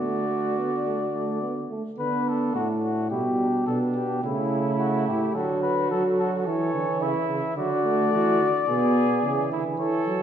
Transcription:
Already playing: bass trombone D3, flugelhorn F#4, trumpet D5
0.01 euphonium A3
0.29 euphonium A3
0.58 euphonium B3
0.85 euphonium A3
1.13 euphonium A3
1.42 euphonium B3
1.70 euphonium A3
1.98 bass trombone D3, euphonium B3, flugelhorn D4, trumpet B4
2.29 trumpet A4
2.54 bass trombone A2, euphonium A3, trumpet F#4
2.84 trumpet F#4
3.10 bass trombone B2, euphonium G3, flugelhorn E4, trumpet G4
3.40 flugelhorn D4
3.66 bass trombone B2, euphonium B3, flugelhorn D4, trumpet A4
3.95 trumpet G4
4.23 bass trombone C#3, euphonium A3, flugelhorn E4, trumpet E4
4.79 trumpet F#4
5.08 bass trombone A2, trumpet G4
5.35 bass trombone D3, euphonium F#3, flugelhorn F#4, trumpet A4
5.63 trumpet B4
5.90 euphonium D3, bass trombone F#3, trumpet A4
6.19 trumpet A4
6.46 bass trombone E3, euphonium E3, flugelhorn A4, trumpet C#5
6.74 bass trombone D3
7.01 bass trombone C#3, flugelhorn E4, trumpet E5
7.29 bass trombone C#3
7.57 bass trombone D3, euphonium F#3, flugelhorn F#4, trumpet D5
7.85 euphonium A3
8.13 bass trombone E3, flugelhorn F#4
8.41 bass trombone D3
8.68 bass trombone B2, euphonium B3, flugelhorn G#4
9.23 bass trombone C#3, euphonium E3
9.51 bass trombone D3, flugelhorn E4
9.79 bass trombone E3, flugelhorn A4, trumpet C#5
10.07 bass trombone F#3

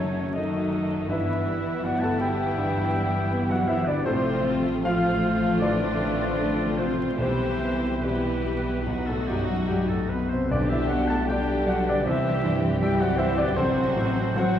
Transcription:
Already playing: double bass section F#1, grand piano F#2 F#3 C#4 A4 C#5, cello section C#3, trombone section D#3 A3, viola section F#3, violin section A3 D#4, french horn section C#4, clarinet A4, oboe C#5, flute C#5
0.32 cello section D#3, viola section F#3, violin section A3 D#4, grand piano A3 D#5, french horn section D#4, oboe D#5, flute D#5
0.37 grand piano D#4 A4, clarinet A4
0.73 grand piano A4
1.08 double bass section G1, grand piano G2 E5, trombone section E3 B3, cello section E3, viola section E3, violin section B3 E4, french horn section E4, clarinet B4, oboe E5, flute E5
1.12 grand piano E4 B4
1.46 grand piano G3
1.81 cello section F#3, grand piano B3 F#5, french horn section F#4, clarinet D5, flute F#5, oboe F#5
1.86 grand piano F#4
2.00 cello section A3, french horn section A4, clarinet F#5, oboe A5, flute A5, grand piano A5
2.04 grand piano A4
2.19 cello section G3, grand piano G4 E5 G5, french horn section G4, clarinet E5, flute G5, oboe G5
2.58 grand piano G2
2.94 grand piano G3
3.31 grand piano B3
3.48 cello section F#3, french horn section F#4, clarinet D5, flute F#5, grand piano F#5
3.52 grand piano F#4, oboe F#5
3.67 cello section E3, french horn section E4, grand piano E4 G4 E5, clarinet C5, oboe E5, flute E5
3.85 cello section D3, french horn section D4, clarinet B4, flute D5, oboe D5, grand piano D5
3.89 grand piano D4
4.04 double bass section A1, grand piano A2 A4 C5, cello section C3, trombone section F3 A3, viola section A3, violin section C4 F4, french horn section C4, clarinet A4, flute C5, oboe C5
4.08 grand piano C4
4.48 grand piano F3
4.84 cello section F3, viola section A3, grand piano A3 F4 C5 F5, violin section C4 F4, french horn section F4, clarinet C5, flute F5, oboe F5
5.26 grand piano F4
5.59 grand piano A2 D4 A4 D5, cello section D3, french horn section D4, clarinet B4, oboe D5, flute D5
6.00 grand piano F3
6.39 grand piano A3
6.77 cello section C3, french horn section C4, grand piano C4 F4 C5, clarinet A4, oboe C5, flute C5
7.18 grand piano B1 C4 G4 C5, double bass section B1, timpani B2, cello section C3, viola section E3, trombone section G3 E4, french horn section C4, violin section E4 G4, clarinet A4, oboe C5, flute C5
7.61 grand piano B2
8.02 cello section B2, viola section E3, grand piano G3 B3 G4 B4, french horn section B3, violin section E4 G4, clarinet G4, flute B4, oboe B4
8.46 grand piano G4
8.84 grand piano B1, viola section F#3, trombone section F#3 D#4, violin section D#4 F#4
9.07 cello section A2, french horn section A3, clarinet F#4, oboe A4, flute A4, grand piano A4
9.11 grand piano A3
9.27 grand piano F#2 G4, cello section G2, french horn section G3, clarinet E4, oboe G4, flute G4
9.31 grand piano G3
9.46 cello section F#2, french horn section F#3, oboe F#4, flute F#4
9.50 grand piano F#3 F#4, clarinet D#4
9.67 cello section G2, french horn section G3, clarinet E4, flute G4, oboe G4, grand piano G4
9.71 grand piano F#3 G3
9.86 cello section A2, french horn section A3, clarinet F#4, flute A4, oboe A4
9.92 grand piano A3 A4
10.09 cello section B2, french horn section B3, clarinet G4, grand piano B4, oboe B4, flute B4
10.13 grand piano B3
10.28 cello section C3, french horn section C4, clarinet A4, flute C5, oboe C5, grand piano C5
10.34 grand piano C4
10.48 grand piano B1 D5, timpani B2, viola section D3, cello section D3, trombone section G3 D4, french horn section D4, violin section G4, clarinet B4, flute D5, oboe D5
10.52 violin section D4, grand piano D4
10.68 cello section E3, french horn section E4, clarinet C5, flute E5, oboe E5, grand piano E5
10.73 grand piano E4
10.87 grand piano B2 F#5, cello section F#3, clarinet D5, flute F#5, oboe F#5
10.91 french horn section F#4, grand piano F#4
11.06 clarinet F#5, flute A5, oboe A5
11.10 cello section A3, french horn section A4, grand piano A4 A5
11.26 viola section D3, cello section G3, violin section G4, clarinet D5, flute G5, oboe G5
11.30 grand piano G3 G4 D5 G5, violin section D4, french horn section G4
11.66 cello section F#3, french horn section F#4, grand piano F#4 D5 F#5, clarinet D5, flute F#5
11.70 oboe F#5
11.84 cello section D3, clarinet B4, flute D5
11.89 french horn section D4, grand piano D4 D5, oboe D5
12.04 double bass section C2, grand piano C2 E5, viola section E3, cello section E3, trombone section C4, violin section C4 G4, french horn section E4, clarinet C5, flute E5
12.08 grand piano E4 C5, oboe E5
12.44 grand piano G2
12.80 viola section E3, cello section G3, grand piano G3 G4 G5, violin section C4 G4, french horn section G4, clarinet E5, flute G5, oboe G5
12.99 cello section F#3, french horn section F#4, grand piano F#4 F#5, clarinet D5, flute F#5, oboe F#5
13.17 cello section E3, french horn section E4, grand piano E4 C5 E5, clarinet C5, flute E5, oboe E5
13.37 cello section D3, french horn section D4, grand piano D4 D5, clarinet B4, flute D5, oboe D5
13.56 double bass section A1, grand piano A1 C4 A4 C5, cello section C3, trombone section F#3, viola section F#3, french horn section C4, violin section C4 F#4, clarinet A4, flute C5, oboe C5
13.96 grand piano A2
14.36 grand piano F#3 F#4 C5 F#5, viola section F#3, cello section F#3, violin section C4 F#4, french horn section F#4, clarinet C5, flute F#5, oboe F#5

